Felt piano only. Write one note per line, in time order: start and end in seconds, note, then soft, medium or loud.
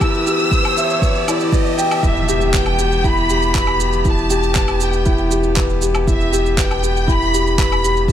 0.00 0.02 E4 medium
0.00 0.26 E4 medium
0.00 0.27 G4 medium
0.00 0.52 B4 medium
0.00 0.77 E5 medium
0.27 0.51 G4 medium
0.52 0.67 B4 medium
0.77 1.01 E5 medium
1.02 1.27 B4 medium
1.28 1.52 E4 medium
1.53 1.77 B4 medium
1.78 1.92 G5 medium
2.03 2.18 E4 medium
2.28 2.52 G4 loud
2.53 2.77 B4 medium
2.79 3.03 G4 medium
3.04 3.28 E4 loud
3.29 3.44 G4 medium
3.55 3.79 B4 medium
3.79 4.04 G4 medium
4.05 4.19 E4 medium
4.30 4.54 G4 loud
4.55 4.79 B4 medium
4.81 5.05 G4 medium
5.06 5.30 E4 loud
5.31 5.45 G4 medium
5.56 5.80 B4 medium
5.82 6.06 G4 medium
6.07 6.21 E4 medium
6.32 6.56 G4 loud
6.57 6.81 B4 medium
6.83 7.07 G4 medium
7.07 7.32 E4 loud
7.33 7.48 G4 medium
7.59 7.82 B4 medium
7.83 8.07 G4 medium
8.09 8.12 E4 medium